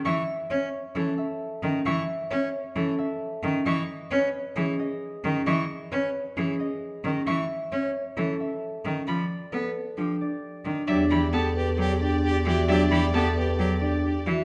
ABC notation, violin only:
X:1
M:4/4
L:1/8
Q:1/4=133
K:E
V:1 name="Violin"
c' z6 z | c' z6 z | c' z6 z | c' z6 z |
c' z6 z | b z6 z | [K:Em] e b a z4 z | e b a z4 z |]